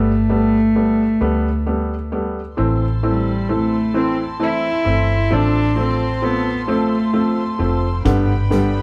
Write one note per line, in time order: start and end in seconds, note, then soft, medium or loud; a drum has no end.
0.00 1.18 G1 medium
0.00 0.11 G3 medium
0.00 0.11 A3 medium
0.00 2.09 A3 medium
0.00 0.11 B3 medium
0.29 0.56 G3 medium
0.29 0.56 A3 medium
0.29 0.56 B3 medium
0.76 1.02 G3 medium
0.76 1.02 A3 medium
0.76 1.02 B3 medium
1.21 2.54 D2 medium
1.21 1.47 G3 medium
1.21 1.47 A3 medium
1.21 1.48 B3 medium
1.66 1.93 G3 medium
1.66 1.93 A3 medium
1.66 1.93 B3 medium
2.12 2.39 G3 medium
2.12 2.39 A3 medium
2.12 2.39 B3 medium
2.57 4.83 A1 medium
2.57 2.84 E3 medium
2.57 2.84 A3 medium
2.57 2.84 C4 medium
2.57 5.29 E4 medium
2.57 8.01 A4 medium
2.57 8.01 A5 medium
2.57 8.01 C6 medium
3.03 3.30 E3 medium
3.03 3.53 G3 medium
3.03 3.30 A3 medium
3.03 3.30 C4 medium
3.49 3.75 E3 medium
3.49 3.75 A3 medium
3.49 3.96 A3 medium
3.49 3.76 C4 medium
3.94 4.21 E3 medium
3.94 4.21 A3 medium
3.94 4.21 C4 medium
3.94 4.16 C4 medium
4.40 4.66 E3 medium
4.40 4.67 A3 medium
4.40 4.67 C4 medium
4.40 5.34 E4 loud
4.85 5.29 G1 medium
4.85 5.12 E3 medium
4.85 5.12 A3 medium
4.85 5.12 C4 medium
5.31 7.56 A1 medium
5.31 5.57 F3 medium
5.31 5.58 A3 medium
5.31 5.58 C4 medium
5.31 5.78 D4 medium
5.31 8.03 F4 medium
5.76 6.03 F3 medium
5.76 6.03 A3 medium
5.76 6.03 C4 medium
5.76 6.25 C4 medium
6.22 6.49 F3 medium
6.22 6.49 A3 medium
6.22 6.68 B3 medium
6.22 6.49 C4 medium
6.68 6.94 F3 medium
6.68 6.94 A3 medium
6.68 7.67 A3 medium
6.68 6.94 C4 medium
7.13 7.40 F3 medium
7.13 7.40 A3 medium
7.13 7.40 C4 medium
7.59 8.02 F1 medium
7.59 7.85 F3 medium
7.59 7.86 A3 medium
7.59 7.86 C4 medium
8.05 8.82 G1 medium
8.05 8.31 D3 medium
8.05 8.31 G3 medium
8.05 8.32 B3 medium
8.05 8.82 D4 medium
8.05 8.82 B4 medium
8.05 8.82 G5 medium
8.05 8.82 B5 medium
8.05 kick medium
8.05 closed hi-hat medium
8.50 8.77 D3 medium
8.50 8.77 G3 medium
8.50 8.72 G3 medium
8.50 8.77 B3 medium
8.50 closed hi-hat soft